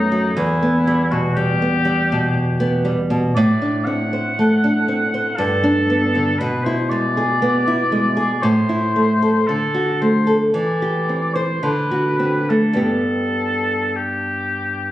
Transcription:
0.00 0.33 F#2 medium
0.00 0.26 A3 medium
0.00 0.35 D#4 medium
0.12 0.36 F#3 medium
0.36 3.31 E2 medium
0.36 1.12 E4 medium
0.62 1.01 B3 medium
0.87 1.26 G3 medium
1.11 1.51 B2 soft
1.11 1.34 F#4 medium
1.35 1.76 G3 medium
1.35 2.80 G4 medium
1.62 2.01 B3 medium
1.85 2.25 G3 medium
2.12 2.90 B2 medium
2.60 2.99 B3 medium
2.85 3.24 G3 medium
3.10 3.35 B2 medium
3.35 5.34 A2 medium
3.35 3.86 D5 medium
3.62 4.01 D4 medium
3.84 4.26 C4 medium
3.84 5.38 F#5 loud
4.13 4.52 C5 medium
4.39 4.78 A3 medium
4.64 5.03 D4 medium
4.88 5.28 C4 medium
5.14 5.38 C5 medium
5.36 6.36 G2 medium
5.36 6.40 A4 loud
5.64 6.03 D4 medium
5.90 6.29 B3 medium
6.15 6.39 D3 medium
6.39 8.39 B2 medium
6.39 6.64 B4 medium
6.63 7.06 E4 medium
6.63 6.91 C5 medium
6.89 7.31 G#3 medium
6.89 8.44 D5 loud
7.17 7.57 G#4 medium
7.42 7.82 B3 medium
7.68 8.07 E4 medium
7.92 8.32 G#3 medium
8.17 8.42 G#4 medium
8.42 9.44 A2 medium
8.42 9.48 C5 medium
8.69 9.11 E4 medium
8.96 9.37 A3 medium
9.22 9.48 A4 soft
9.47 10.51 D3 medium
9.47 10.00 A4 medium
9.74 10.16 F#4 medium
10.01 10.43 A3 soft
10.01 10.34 C5 medium
10.27 10.53 A4 soft
10.54 11.59 E3 medium
10.54 11.36 D5 medium
10.82 11.24 G4 soft
11.09 11.52 C4 soft
11.35 11.64 C5 medium
11.35 11.63 C5 soft
11.63 12.76 D3 medium
11.63 12.51 B4 medium
11.91 12.38 F#4 soft
12.19 12.67 C4 soft
12.50 12.79 A3 soft
12.50 12.79 A4 medium
12.73 14.92 G2 medium
12.73 14.92 B3 soft
12.73 14.92 G4 soft
12.80 13.97 A4 medium
13.95 14.92 G4 medium

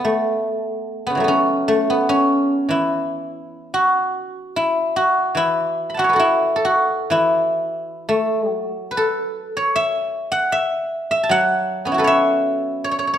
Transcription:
0.00 1.06 B3 soft
0.05 1.20 A3 medium
1.07 1.30 C#3 soft
1.07 1.24 B3 medium
1.15 2.68 E3 soft
1.15 2.75 F#3 soft
1.20 1.68 A3 soft
1.24 1.90 B3 soft
1.24 2.09 C#4 medium
1.68 5.01 A3 medium
1.90 5.00 B3 medium
2.09 4.98 C#4 medium
2.69 5.15 E3 soft
2.69 4.56 E4 medium
3.74 4.96 F#4 medium
4.56 5.37 E4 medium
4.96 5.99 F#4 medium
5.35 7.09 E3 soft
5.35 6.19 E4 medium
5.90 7.25 B5 soft
5.94 7.57 F#5 soft
5.94 7.39 A5 soft
5.99 6.15 F#4 medium
5.99 7.72 E5 soft
6.04 7.95 C#5 soft
6.09 6.55 A4 soft
6.09 8.14 B4 soft
6.16 7.11 E4 medium
6.16 6.64 F#4 medium
6.56 8.75 A4 medium
6.65 9.08 F#4 medium
7.10 9.75 E3 medium
7.10 9.72 E4 medium
8.09 8.52 A3 medium
8.52 11.29 F#3 medium
8.91 10.96 B4 medium
8.97 11.17 A4 medium
9.57 11.47 C#5 medium
9.76 10.52 E5 medium
10.32 11.31 F#5 medium
10.52 11.11 E5 medium
11.11 12.07 E5 medium
11.23 12.68 A5 medium
11.29 13.18 F#3 medium
11.29 12.92 F#5 loud
11.85 13.18 B3 soft
11.85 13.18 C#4 soft
11.92 13.18 E4 soft
11.92 13.18 F#4 soft
11.98 13.18 A4 medium
11.98 13.18 B4 medium
12.04 12.84 C#5 medium
12.04 13.18 E5 medium
12.84 12.91 C#5 medium
12.91 12.98 C#5 medium
12.99 13.07 C#5 medium
13.07 13.13 C#5 soft
13.14 13.18 C#5 medium

